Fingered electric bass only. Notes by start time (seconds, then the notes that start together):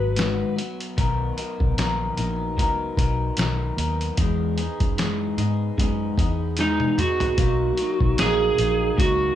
Already playing: G#1
0.98 B1
1.60 B1
1.77 A#1
2.17 A#1
2.58 C#2
2.97 B1
3.38 B1
3.77 D#2
4.18 E2
4.80 F#2
5.37 G#2
5.78 F#2
6.18 E2
7.38 B1
8.00 B1
8.18 A#1
8.58 A#1
8.98 C#2